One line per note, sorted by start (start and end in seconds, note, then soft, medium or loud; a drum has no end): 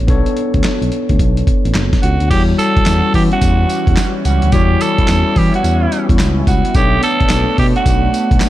0.07 0.23 B1 loud
0.07 2.26 B3 medium
0.07 2.26 D4 medium
0.07 2.27 A4 medium
0.07 2.27 C#5 medium
0.07 kick loud
0.07 closed hi-hat medium
0.26 closed hi-hat medium
0.37 closed hi-hat medium
0.54 0.62 D2 medium
0.54 kick medium
0.54 closed hi-hat soft
0.64 snare loud
0.64 clap loud
0.64 closed hi-hat medium
0.82 0.90 B1 medium
0.82 closed hi-hat medium
0.92 closed hi-hat medium
1.09 1.18 D2 medium
1.09 kick medium
1.09 closed hi-hat medium
1.19 1.43 B1 medium
1.19 kick loud
1.19 closed hi-hat medium
1.37 closed hi-hat medium
1.47 kick loud
1.47 closed hi-hat medium
1.65 1.73 A1 medium
1.65 closed hi-hat medium
1.74 1.90 F#1 medium
1.74 snare loud
1.74 clap medium
1.74 closed hi-hat medium
1.93 kick medium
1.93 snare medium
1.93 closed hi-hat medium
2.02 2.18 C#2 medium
2.02 2.28 F#4 loud
2.02 closed hi-hat medium
2.20 2.29 D2 medium
2.20 closed hi-hat medium
2.30 2.54 E2 loud
2.30 6.71 E3 medium
2.30 4.48 G3 medium
2.30 6.71 G3 medium
2.30 8.49 B3 medium
2.30 6.71 C#4 medium
2.30 4.49 E4 medium
2.30 4.51 F#4 medium
2.30 4.49 F#4 medium
2.30 2.43 G4 loud
2.30 4.50 C#5 medium
2.30 kick loud
2.30 closed hi-hat medium
2.30 crash medium
2.30 tambourine medium
2.59 3.10 A4 loud
2.59 closed hi-hat medium
2.59 tambourine medium
2.76 2.80 E2 soft
2.76 kick loud
2.76 closed hi-hat medium
2.86 3.01 E2 loud
2.86 snare loud
2.86 clap loud
2.86 closed hi-hat medium
2.86 tambourine medium
3.14 3.29 E3 loud
3.14 3.23 G4 loud
3.14 kick medium
3.14 open hi-hat medium
3.32 4.11 F#4 loud
3.32 closed hi-hat medium
3.41 3.65 E2 loud
3.41 kick medium
3.41 closed hi-hat medium
3.41 tambourine medium
3.69 closed hi-hat medium
3.69 tambourine medium
3.87 3.96 E2 medium
3.87 kick loud
3.87 closed hi-hat medium
3.96 snare loud
3.96 clap loud
3.96 closed hi-hat medium
3.96 tambourine loud
4.25 4.40 C#2 medium
4.25 4.54 F#4 medium
4.25 closed hi-hat medium
4.25 tambourine medium
4.42 4.54 D2 medium
4.42 closed hi-hat medium
4.52 4.76 E2 loud
4.52 6.71 G3 medium
4.52 6.73 E4 medium
4.52 6.71 E4 medium
4.52 6.71 F#4 medium
4.52 4.82 G4 loud
4.52 6.72 C#5 medium
4.52 kick loud
4.52 closed hi-hat medium
4.52 tambourine medium
4.81 5.39 A4 loud
4.81 closed hi-hat medium
4.81 tambourine medium
4.98 5.03 E2 soft
4.98 kick medium
4.98 closed hi-hat medium
5.08 5.24 E2 medium
5.08 snare loud
5.08 clap loud
5.08 closed hi-hat medium
5.08 tambourine medium
5.36 5.51 E3 loud
5.36 5.55 G4 medium
5.36 kick medium
5.36 open hi-hat medium
5.54 6.07 F#4 medium
5.54 closed hi-hat medium
5.64 5.87 E2 loud
5.64 closed hi-hat medium
5.64 tambourine medium
5.92 closed hi-hat medium
5.92 tambourine medium
6.09 6.18 E2 medium
6.09 kick loud
6.09 closed hi-hat medium
6.19 6.43 C#2 medium
6.19 snare loud
6.19 clap loud
6.19 closed hi-hat medium
6.19 tambourine loud
6.47 6.62 C#2 medium
6.47 6.77 F#4 loud
6.47 kick loud
6.47 closed hi-hat medium
6.47 tambourine medium
6.65 closed hi-hat medium
6.75 6.98 B1 loud
6.75 8.49 A3 medium
6.75 8.49 B3 medium
6.75 8.49 D4 medium
6.75 7.03 G4 loud
6.75 8.49 A4 medium
6.75 8.49 C#5 medium
6.75 kick loud
6.75 closed hi-hat medium
6.75 tambourine medium
7.03 7.55 A4 loud
7.03 closed hi-hat medium
7.03 tambourine medium
7.20 7.25 B1 soft
7.20 kick medium
7.20 closed hi-hat soft
7.29 7.45 B1 loud
7.29 snare loud
7.29 clap medium
7.29 closed hi-hat medium
7.29 tambourine medium
7.58 7.73 B2 loud
7.58 7.67 G4 loud
7.58 kick medium
7.58 open hi-hat medium
7.76 8.49 F#4 loud
7.76 closed hi-hat medium
7.86 8.09 B1 loud
7.86 kick medium
7.86 closed hi-hat medium
7.86 tambourine medium
8.14 closed hi-hat medium
8.14 tambourine medium
8.31 8.40 B1 medium
8.31 kick loud
8.31 closed hi-hat medium
8.40 snare loud
8.40 clap loud
8.40 closed hi-hat medium
8.40 tambourine loud